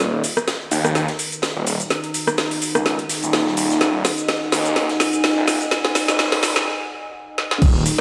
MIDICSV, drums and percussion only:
0, 0, Header, 1, 2, 480
1, 0, Start_track
1, 0, Time_signature, 4, 2, 24, 8
1, 0, Key_signature, -6, "minor"
1, 0, Tempo, 476190
1, 8071, End_track
2, 0, Start_track
2, 0, Title_t, "Drums"
2, 0, Note_on_c, 9, 38, 46
2, 0, Note_on_c, 9, 42, 70
2, 5, Note_on_c, 9, 82, 33
2, 100, Note_off_c, 9, 38, 0
2, 100, Note_off_c, 9, 42, 0
2, 106, Note_off_c, 9, 82, 0
2, 238, Note_on_c, 9, 42, 71
2, 240, Note_on_c, 9, 46, 104
2, 245, Note_on_c, 9, 82, 80
2, 339, Note_off_c, 9, 42, 0
2, 340, Note_off_c, 9, 46, 0
2, 346, Note_off_c, 9, 82, 0
2, 373, Note_on_c, 9, 37, 75
2, 373, Note_on_c, 9, 42, 53
2, 378, Note_on_c, 9, 82, 44
2, 473, Note_off_c, 9, 37, 0
2, 473, Note_off_c, 9, 42, 0
2, 479, Note_off_c, 9, 82, 0
2, 480, Note_on_c, 9, 38, 111
2, 480, Note_on_c, 9, 42, 69
2, 484, Note_off_c, 9, 42, 0
2, 484, Note_on_c, 9, 42, 80
2, 485, Note_on_c, 9, 82, 33
2, 581, Note_off_c, 9, 38, 0
2, 585, Note_off_c, 9, 42, 0
2, 586, Note_off_c, 9, 82, 0
2, 716, Note_on_c, 9, 42, 68
2, 720, Note_on_c, 9, 46, 103
2, 725, Note_on_c, 9, 82, 77
2, 817, Note_off_c, 9, 42, 0
2, 820, Note_off_c, 9, 46, 0
2, 826, Note_off_c, 9, 82, 0
2, 853, Note_on_c, 9, 37, 74
2, 853, Note_on_c, 9, 42, 55
2, 858, Note_on_c, 9, 82, 45
2, 953, Note_off_c, 9, 37, 0
2, 953, Note_off_c, 9, 42, 0
2, 959, Note_off_c, 9, 82, 0
2, 960, Note_on_c, 9, 38, 50
2, 960, Note_on_c, 9, 42, 65
2, 962, Note_off_c, 9, 42, 0
2, 962, Note_on_c, 9, 42, 83
2, 965, Note_on_c, 9, 82, 32
2, 1061, Note_off_c, 9, 38, 0
2, 1063, Note_off_c, 9, 42, 0
2, 1066, Note_off_c, 9, 82, 0
2, 1084, Note_on_c, 9, 38, 42
2, 1093, Note_on_c, 9, 42, 38
2, 1185, Note_off_c, 9, 38, 0
2, 1193, Note_off_c, 9, 42, 0
2, 1197, Note_on_c, 9, 42, 62
2, 1200, Note_on_c, 9, 46, 107
2, 1205, Note_on_c, 9, 82, 78
2, 1298, Note_off_c, 9, 42, 0
2, 1301, Note_off_c, 9, 46, 0
2, 1306, Note_off_c, 9, 82, 0
2, 1333, Note_on_c, 9, 42, 52
2, 1338, Note_on_c, 9, 82, 43
2, 1433, Note_on_c, 9, 38, 103
2, 1434, Note_off_c, 9, 42, 0
2, 1439, Note_off_c, 9, 82, 0
2, 1440, Note_off_c, 9, 38, 0
2, 1440, Note_on_c, 9, 38, 55
2, 1440, Note_on_c, 9, 42, 68
2, 1443, Note_off_c, 9, 42, 0
2, 1443, Note_on_c, 9, 42, 84
2, 1445, Note_on_c, 9, 82, 33
2, 1541, Note_off_c, 9, 38, 0
2, 1544, Note_off_c, 9, 42, 0
2, 1546, Note_off_c, 9, 82, 0
2, 1680, Note_on_c, 9, 46, 103
2, 1683, Note_off_c, 9, 46, 0
2, 1683, Note_on_c, 9, 46, 83
2, 1685, Note_on_c, 9, 82, 78
2, 1784, Note_off_c, 9, 46, 0
2, 1786, Note_off_c, 9, 82, 0
2, 1813, Note_on_c, 9, 42, 55
2, 1818, Note_on_c, 9, 82, 47
2, 1914, Note_off_c, 9, 42, 0
2, 1918, Note_on_c, 9, 42, 89
2, 1919, Note_off_c, 9, 82, 0
2, 1920, Note_off_c, 9, 42, 0
2, 1920, Note_on_c, 9, 38, 59
2, 1920, Note_on_c, 9, 42, 68
2, 1925, Note_on_c, 9, 82, 30
2, 2021, Note_off_c, 9, 38, 0
2, 2021, Note_off_c, 9, 42, 0
2, 2026, Note_off_c, 9, 82, 0
2, 2053, Note_on_c, 9, 42, 37
2, 2054, Note_off_c, 9, 42, 0
2, 2054, Note_on_c, 9, 42, 42
2, 2154, Note_off_c, 9, 42, 0
2, 2158, Note_on_c, 9, 42, 61
2, 2160, Note_on_c, 9, 46, 107
2, 2165, Note_on_c, 9, 82, 76
2, 2259, Note_off_c, 9, 42, 0
2, 2261, Note_off_c, 9, 46, 0
2, 2266, Note_off_c, 9, 82, 0
2, 2292, Note_on_c, 9, 42, 43
2, 2293, Note_off_c, 9, 42, 0
2, 2293, Note_on_c, 9, 37, 75
2, 2293, Note_on_c, 9, 42, 55
2, 2298, Note_on_c, 9, 82, 45
2, 2394, Note_off_c, 9, 37, 0
2, 2394, Note_off_c, 9, 42, 0
2, 2395, Note_on_c, 9, 42, 79
2, 2399, Note_off_c, 9, 82, 0
2, 2400, Note_off_c, 9, 42, 0
2, 2400, Note_on_c, 9, 38, 63
2, 2400, Note_on_c, 9, 42, 66
2, 2402, Note_off_c, 9, 38, 0
2, 2402, Note_on_c, 9, 38, 98
2, 2405, Note_on_c, 9, 82, 32
2, 2501, Note_off_c, 9, 42, 0
2, 2503, Note_off_c, 9, 38, 0
2, 2506, Note_off_c, 9, 82, 0
2, 2533, Note_on_c, 9, 46, 62
2, 2634, Note_off_c, 9, 46, 0
2, 2635, Note_on_c, 9, 42, 63
2, 2640, Note_on_c, 9, 46, 109
2, 2645, Note_on_c, 9, 82, 77
2, 2735, Note_off_c, 9, 42, 0
2, 2741, Note_off_c, 9, 46, 0
2, 2746, Note_off_c, 9, 82, 0
2, 2773, Note_on_c, 9, 37, 79
2, 2773, Note_on_c, 9, 42, 52
2, 2778, Note_on_c, 9, 82, 45
2, 2874, Note_off_c, 9, 37, 0
2, 2874, Note_off_c, 9, 42, 0
2, 2879, Note_off_c, 9, 82, 0
2, 2880, Note_on_c, 9, 38, 66
2, 2880, Note_on_c, 9, 42, 62
2, 2883, Note_off_c, 9, 42, 0
2, 2883, Note_on_c, 9, 42, 80
2, 2885, Note_on_c, 9, 82, 31
2, 2981, Note_off_c, 9, 38, 0
2, 2984, Note_off_c, 9, 42, 0
2, 2986, Note_off_c, 9, 82, 0
2, 3013, Note_on_c, 9, 42, 38
2, 3114, Note_off_c, 9, 42, 0
2, 3117, Note_on_c, 9, 38, 55
2, 3120, Note_on_c, 9, 46, 112
2, 3122, Note_on_c, 9, 42, 72
2, 3125, Note_on_c, 9, 82, 74
2, 3218, Note_off_c, 9, 38, 0
2, 3220, Note_off_c, 9, 46, 0
2, 3223, Note_off_c, 9, 42, 0
2, 3226, Note_off_c, 9, 82, 0
2, 3252, Note_on_c, 9, 42, 44
2, 3253, Note_off_c, 9, 42, 0
2, 3253, Note_on_c, 9, 42, 52
2, 3258, Note_on_c, 9, 82, 44
2, 3354, Note_off_c, 9, 42, 0
2, 3356, Note_on_c, 9, 42, 89
2, 3359, Note_off_c, 9, 82, 0
2, 3360, Note_off_c, 9, 42, 0
2, 3360, Note_on_c, 9, 38, 68
2, 3360, Note_on_c, 9, 42, 63
2, 3361, Note_off_c, 9, 38, 0
2, 3361, Note_on_c, 9, 38, 106
2, 3365, Note_on_c, 9, 82, 31
2, 3460, Note_off_c, 9, 42, 0
2, 3462, Note_off_c, 9, 38, 0
2, 3466, Note_off_c, 9, 82, 0
2, 3495, Note_on_c, 9, 38, 47
2, 3596, Note_off_c, 9, 38, 0
2, 3599, Note_on_c, 9, 46, 111
2, 3602, Note_on_c, 9, 42, 70
2, 3605, Note_on_c, 9, 82, 77
2, 3700, Note_off_c, 9, 46, 0
2, 3702, Note_off_c, 9, 42, 0
2, 3705, Note_off_c, 9, 82, 0
2, 3732, Note_on_c, 9, 38, 49
2, 3732, Note_on_c, 9, 42, 53
2, 3738, Note_on_c, 9, 82, 42
2, 3833, Note_off_c, 9, 38, 0
2, 3833, Note_off_c, 9, 42, 0
2, 3837, Note_on_c, 9, 42, 82
2, 3838, Note_off_c, 9, 82, 0
2, 3840, Note_off_c, 9, 42, 0
2, 3840, Note_on_c, 9, 38, 76
2, 3840, Note_on_c, 9, 42, 64
2, 3845, Note_on_c, 9, 82, 32
2, 3941, Note_off_c, 9, 38, 0
2, 3941, Note_off_c, 9, 42, 0
2, 3946, Note_off_c, 9, 82, 0
2, 4078, Note_on_c, 9, 42, 73
2, 4080, Note_on_c, 9, 38, 78
2, 4080, Note_on_c, 9, 46, 116
2, 4085, Note_on_c, 9, 82, 76
2, 4179, Note_off_c, 9, 42, 0
2, 4181, Note_off_c, 9, 38, 0
2, 4181, Note_off_c, 9, 46, 0
2, 4186, Note_off_c, 9, 82, 0
2, 4213, Note_on_c, 9, 42, 52
2, 4218, Note_on_c, 9, 82, 44
2, 4314, Note_off_c, 9, 42, 0
2, 4317, Note_on_c, 9, 42, 87
2, 4319, Note_off_c, 9, 82, 0
2, 4319, Note_on_c, 9, 38, 110
2, 4320, Note_off_c, 9, 38, 0
2, 4320, Note_off_c, 9, 42, 0
2, 4320, Note_on_c, 9, 38, 78
2, 4320, Note_on_c, 9, 42, 68
2, 4325, Note_on_c, 9, 82, 32
2, 4420, Note_off_c, 9, 38, 0
2, 4420, Note_off_c, 9, 42, 0
2, 4426, Note_off_c, 9, 82, 0
2, 4560, Note_on_c, 9, 38, 82
2, 4560, Note_on_c, 9, 46, 114
2, 4565, Note_on_c, 9, 82, 73
2, 4566, Note_on_c, 9, 42, 64
2, 4660, Note_off_c, 9, 38, 0
2, 4660, Note_off_c, 9, 46, 0
2, 4666, Note_off_c, 9, 82, 0
2, 4667, Note_off_c, 9, 42, 0
2, 4692, Note_on_c, 9, 42, 54
2, 4698, Note_on_c, 9, 82, 42
2, 4793, Note_off_c, 9, 42, 0
2, 4798, Note_off_c, 9, 82, 0
2, 4799, Note_on_c, 9, 38, 80
2, 4799, Note_on_c, 9, 42, 64
2, 4801, Note_off_c, 9, 42, 0
2, 4801, Note_on_c, 9, 42, 86
2, 4805, Note_on_c, 9, 82, 32
2, 4900, Note_off_c, 9, 38, 0
2, 4902, Note_off_c, 9, 42, 0
2, 4906, Note_off_c, 9, 82, 0
2, 4930, Note_on_c, 9, 38, 46
2, 4933, Note_on_c, 9, 42, 35
2, 5031, Note_off_c, 9, 38, 0
2, 5033, Note_off_c, 9, 42, 0
2, 5040, Note_on_c, 9, 38, 86
2, 5040, Note_on_c, 9, 46, 112
2, 5045, Note_on_c, 9, 82, 77
2, 5141, Note_off_c, 9, 38, 0
2, 5141, Note_off_c, 9, 46, 0
2, 5146, Note_off_c, 9, 82, 0
2, 5172, Note_on_c, 9, 42, 49
2, 5178, Note_on_c, 9, 82, 44
2, 5273, Note_off_c, 9, 42, 0
2, 5278, Note_off_c, 9, 82, 0
2, 5280, Note_on_c, 9, 38, 89
2, 5280, Note_on_c, 9, 42, 64
2, 5281, Note_off_c, 9, 42, 0
2, 5281, Note_on_c, 9, 42, 93
2, 5282, Note_off_c, 9, 38, 0
2, 5282, Note_on_c, 9, 38, 115
2, 5285, Note_on_c, 9, 82, 32
2, 5382, Note_off_c, 9, 42, 0
2, 5383, Note_off_c, 9, 38, 0
2, 5386, Note_off_c, 9, 82, 0
2, 5520, Note_on_c, 9, 38, 88
2, 5520, Note_on_c, 9, 46, 115
2, 5524, Note_off_c, 9, 46, 0
2, 5524, Note_on_c, 9, 46, 78
2, 5525, Note_on_c, 9, 82, 77
2, 5620, Note_off_c, 9, 38, 0
2, 5625, Note_off_c, 9, 46, 0
2, 5626, Note_off_c, 9, 82, 0
2, 5653, Note_on_c, 9, 42, 53
2, 5658, Note_on_c, 9, 82, 46
2, 5753, Note_off_c, 9, 42, 0
2, 5758, Note_on_c, 9, 42, 87
2, 5759, Note_off_c, 9, 82, 0
2, 5760, Note_off_c, 9, 42, 0
2, 5760, Note_on_c, 9, 38, 93
2, 5760, Note_on_c, 9, 42, 64
2, 5765, Note_on_c, 9, 82, 33
2, 5860, Note_off_c, 9, 38, 0
2, 5860, Note_off_c, 9, 42, 0
2, 5866, Note_off_c, 9, 82, 0
2, 5893, Note_on_c, 9, 38, 82
2, 5893, Note_on_c, 9, 42, 35
2, 5901, Note_off_c, 9, 42, 0
2, 5901, Note_on_c, 9, 42, 48
2, 5993, Note_off_c, 9, 38, 0
2, 5999, Note_off_c, 9, 42, 0
2, 5999, Note_on_c, 9, 42, 65
2, 6000, Note_on_c, 9, 38, 93
2, 6000, Note_on_c, 9, 46, 109
2, 6005, Note_on_c, 9, 82, 79
2, 6100, Note_off_c, 9, 42, 0
2, 6101, Note_off_c, 9, 38, 0
2, 6101, Note_off_c, 9, 46, 0
2, 6106, Note_off_c, 9, 82, 0
2, 6133, Note_on_c, 9, 38, 85
2, 6133, Note_on_c, 9, 42, 50
2, 6137, Note_off_c, 9, 42, 0
2, 6137, Note_on_c, 9, 42, 46
2, 6138, Note_on_c, 9, 82, 44
2, 6233, Note_off_c, 9, 38, 0
2, 6237, Note_off_c, 9, 42, 0
2, 6237, Note_on_c, 9, 42, 86
2, 6239, Note_off_c, 9, 82, 0
2, 6240, Note_off_c, 9, 42, 0
2, 6240, Note_on_c, 9, 38, 99
2, 6240, Note_on_c, 9, 42, 65
2, 6242, Note_off_c, 9, 38, 0
2, 6242, Note_on_c, 9, 38, 101
2, 6245, Note_on_c, 9, 82, 33
2, 6341, Note_off_c, 9, 42, 0
2, 6343, Note_off_c, 9, 38, 0
2, 6346, Note_off_c, 9, 82, 0
2, 6373, Note_on_c, 9, 38, 84
2, 6373, Note_on_c, 9, 46, 62
2, 6474, Note_off_c, 9, 38, 0
2, 6474, Note_off_c, 9, 46, 0
2, 6480, Note_on_c, 9, 38, 100
2, 6480, Note_on_c, 9, 46, 112
2, 6482, Note_on_c, 9, 42, 63
2, 6485, Note_on_c, 9, 82, 79
2, 6580, Note_off_c, 9, 38, 0
2, 6580, Note_off_c, 9, 46, 0
2, 6583, Note_off_c, 9, 42, 0
2, 6586, Note_off_c, 9, 82, 0
2, 6613, Note_on_c, 9, 38, 94
2, 6613, Note_on_c, 9, 42, 54
2, 6618, Note_on_c, 9, 82, 44
2, 6713, Note_off_c, 9, 38, 0
2, 6713, Note_off_c, 9, 42, 0
2, 6719, Note_off_c, 9, 82, 0
2, 7440, Note_on_c, 9, 38, 65
2, 7541, Note_off_c, 9, 38, 0
2, 7573, Note_on_c, 9, 38, 79
2, 7674, Note_off_c, 9, 38, 0
2, 7679, Note_on_c, 9, 42, 83
2, 7680, Note_off_c, 9, 42, 0
2, 7680, Note_on_c, 9, 36, 121
2, 7680, Note_on_c, 9, 42, 72
2, 7680, Note_on_c, 9, 49, 107
2, 7685, Note_on_c, 9, 82, 35
2, 7781, Note_off_c, 9, 36, 0
2, 7781, Note_off_c, 9, 42, 0
2, 7781, Note_off_c, 9, 49, 0
2, 7786, Note_off_c, 9, 82, 0
2, 7920, Note_on_c, 9, 46, 109
2, 7921, Note_on_c, 9, 42, 75
2, 7925, Note_on_c, 9, 82, 81
2, 8020, Note_off_c, 9, 46, 0
2, 8021, Note_off_c, 9, 42, 0
2, 8026, Note_off_c, 9, 82, 0
2, 8071, End_track
0, 0, End_of_file